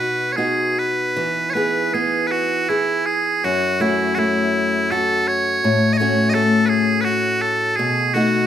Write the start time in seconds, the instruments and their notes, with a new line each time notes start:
Already playing: steel-string acoustic guitar B2 B3 D#4 F#4, bagpipes B4
0.32 bagpipes G#4 C#5
0.37 steel-string acoustic guitar B3 D#4 F#4
0.79 bagpipes B4
1.16 steel-string acoustic guitar E3
1.50 bagpipes B4 C#5
1.55 steel-string acoustic guitar B3 G#4
1.94 steel-string acoustic guitar B3, bagpipes G#4
2.27 bagpipes B4
2.31 bagpipes F#4
2.69 bagpipes E4, steel-string acoustic guitar G#4
3.06 bagpipes G#4
3.44 steel-string acoustic guitar F#2, bagpipes F#4
3.80 steel-string acoustic guitar A3 C#4 F#4, bagpipes E4
4.15 steel-string acoustic guitar A3, bagpipes E4 F#4
4.91 steel-string acoustic guitar F#4, bagpipes A4
5.28 bagpipes C#5
5.64 steel-string acoustic guitar A2
5.93 bagpipes D#5
5.97 steel-string acoustic guitar A3 C#4 F#4, bagpipes C#5
6.30 bagpipes D#5
6.34 steel-string acoustic guitar A3, bagpipes A4
6.66 bagpipes G#4 B4
7.01 bagpipes F#4 B4
7.07 steel-string acoustic guitar F#4
7.42 bagpipes A4
7.76 steel-string acoustic guitar B2, bagpipes G#4
8.14 steel-string acoustic guitar A3 D#4 F#4, bagpipes F#4